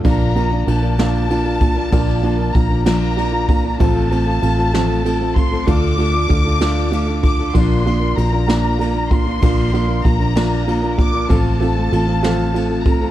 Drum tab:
RD |xxxxxx|xxxxxx|xxxxxx|xxxxxx|
SD |---o--|---o--|---o--|---o--|
BD |o----o|o-o--o|o----o|o-o--o|

RD |xxxxxx|xxxxxx|xxxxxx|
SD |---o--|---o--|---o--|
BD |o----o|o-o--o|o----o|